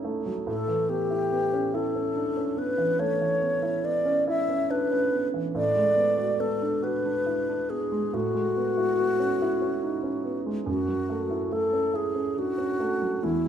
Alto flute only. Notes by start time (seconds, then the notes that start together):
0.48 A4
0.89 G4
1.75 A4
2.58 B4
3.00 C#5
3.85 D5
4.28 E5
4.71 B4
5.56 D5
6.40 A4
6.84 B4
7.70 G#4
8.14 F#4
10.68 F#4
11.53 A4
11.95 G#4
12.39 F#4
13.24 E4